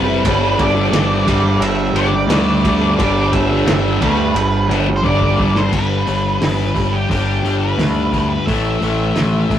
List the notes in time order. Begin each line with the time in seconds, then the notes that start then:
Already playing: F#1 C3 G3 C4 B4
0.07 G3 C4 E4
0.24 G1 G2 D3 G3 B3 D4, kick, ride
0.58 G1 D5, kick, ride
0.75 G3 B3 D4
0.91 G1 G2 D3 G3 B3 D4, snare, ride
1.26 G1 G2 D3 G3 B3 D4, kick, ride
1.43 muted distorted electric guitar stroke
1.59 G1 E5, ride
1.92 G1 D3 G3, ride
1.97 B3 D4 D5
2.13 muted distorted electric guitar stroke
2.27 D2 G2 D3 G3, snare, ride
2.31 B3 D4
2.63 D3 G3 B3 D4, kick, ride
2.81 G3 B3 D4
2.98 G1 G2 D3 G3 B3 D4 D5, kick, ride
3.33 G1 E5, kick, ride
3.50 G3 B3 D4
3.65 G1 G2 D3 G3 B3 D4, snare, ride
4.00 D2 G2 D3 G3 B3 D4 B4, kick, ride
4.19 muted distorted electric guitar stroke
4.34 G1, ride
4.68 G1 D3 G3 B3, ride
4.72 D4
4.88 muted distorted electric guitar stroke
4.96 C5
5.03 G1 G2 D3 G3 B3 D4 D5, kick
5.21 kick
5.38 G1 D3 G3 B3 D4, kick
5.55 G3 B3 D4 C5, snare
5.72 G1 G2 D3 G3 B4, kick, crash
6.07 G1 G2 D3 G3, open hi-hat
6.41 G1 G2 D3 G3 B4, snare, open hi-hat
6.74 G1 G2 D3 G3, kick, open hi-hat
6.92 G4
7.09 G1 G2 D3 G3 G4, kick, open hi-hat
7.43 G1 G2 D3 G3, open hi-hat
7.61 B4
7.78 D2 G2 D3 G3, snare, open hi-hat
8.12 G2 D3 G3, kick, open hi-hat
8.30 B4
8.46 A1 A2 E3 A3 E5, kick, open hi-hat
8.81 A1 A2 E3 A3, open hi-hat
9.16 A1 A2 E3 A3, snare, open hi-hat
9.50 A1 A2 E3 A3, kick, open hi-hat